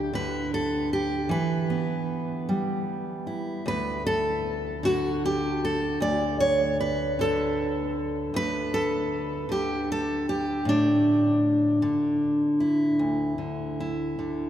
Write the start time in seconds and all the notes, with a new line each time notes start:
Already playing: D2 D3 G4
0.13 D3 B4
0.54 A4
0.93 G4
1.29 E3 B4
1.70 B3
2.49 G3
3.27 E4
3.66 D2 B4
4.07 A4
4.83 D3 F#4
5.25 G4
5.65 A4
6.00 D2 D5
6.40 C#5
6.80 B4
7.19 D3 A4
8.34 D2 B4
8.74 A4
9.49 D3 G4
9.92 A4
10.29 G4
10.65 A2 D4
11.82 D3
12.60 E4
12.99 D2
13.38 D3
13.80 E4
14.19 D3